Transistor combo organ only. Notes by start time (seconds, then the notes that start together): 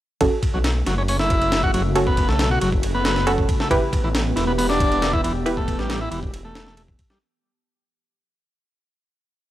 0.54 F#3
0.87 F#3
0.98 C#4
1.09 C#4
1.20 E4
1.63 F#4
1.74 F#3
2.07 B3
2.29 A3
2.51 F#4
2.62 F#3
2.95 B3
3.27 B3
3.60 A3
4.04 E3
4.36 E3
4.47 B3
4.58 B3
4.69 D4
5.13 E4
5.24 E3
5.57 A3
5.79 G3
6.01 E4
6.11 E3
6.45 A3
6.77 A3
7.10 G3